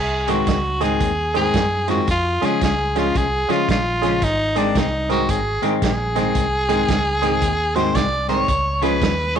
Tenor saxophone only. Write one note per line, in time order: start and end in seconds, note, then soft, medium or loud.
0.00 0.31 G#4 medium
0.30 0.85 F#4 medium
0.83 1.36 G#4 medium
1.36 1.86 G#4 medium
1.90 2.08 F#4 medium
2.11 2.47 F4 medium
2.46 2.63 G#4 medium
2.64 3.00 G#4 medium
2.98 3.19 F4 medium
3.18 3.53 G#4 medium
3.51 3.69 F4 medium
3.71 4.25 F4 medium
4.24 4.60 D#4 medium
4.58 4.80 D4 medium
4.78 5.10 D#4 medium
5.11 5.32 F#4 medium
5.30 5.63 G#4 medium
5.83 7.77 G#4 medium
7.76 7.97 C5 medium
7.95 8.28 D5 medium
8.29 8.84 C#5 medium
8.83 9.37 B4 medium
9.36 9.39 C#5 medium